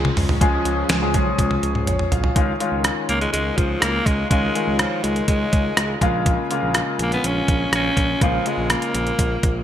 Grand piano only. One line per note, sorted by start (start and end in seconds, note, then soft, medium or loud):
0.00 0.41 F3 medium
0.00 0.41 G#3 medium
0.00 0.42 C#4 medium
0.00 0.42 G#4 medium
0.41 0.78 F3 medium
0.41 0.78 G#3 medium
0.41 0.78 C#4 medium
0.41 0.79 G#4 medium
1.02 1.09 F3 medium
1.02 1.09 G#3 medium
1.02 1.10 C#4 medium
1.02 1.10 G#4 medium
1.14 1.73 F3 medium
1.14 1.74 G#3 medium
1.14 1.74 C#4 medium
1.14 1.74 G#4 medium
1.88 2.11 C#5 medium
2.12 2.58 F5 medium
2.36 2.51 D#3 medium
2.36 2.51 G#3 medium
2.36 2.51 C#4 medium
2.36 2.51 F4 medium
2.60 3.20 D#3 medium
2.60 3.20 G#3 medium
2.60 3.20 C#4 medium
2.60 3.20 F4 medium
4.31 4.46 D#3 medium
4.31 4.46 G#3 medium
4.31 4.46 C#4 medium
4.31 4.46 F4 medium
4.55 5.15 D#3 medium
4.55 5.15 G#3 medium
4.55 5.15 C#4 medium
4.55 5.15 F4 medium
6.01 6.41 C#3 medium
6.01 6.41 G#3 medium
6.01 6.41 A#3 medium
6.01 6.41 F4 loud
6.51 7.10 C#3 medium
6.51 7.10 G#3 medium
6.51 7.10 A#3 medium
6.51 7.11 F4 medium
8.21 8.36 C#3 medium
8.21 8.36 G#3 medium
8.21 8.37 A#3 medium
8.21 8.37 F4 medium
8.46 9.05 C#3 medium
8.46 9.06 G#3 medium
8.46 9.06 A#3 medium
8.46 9.06 F4 medium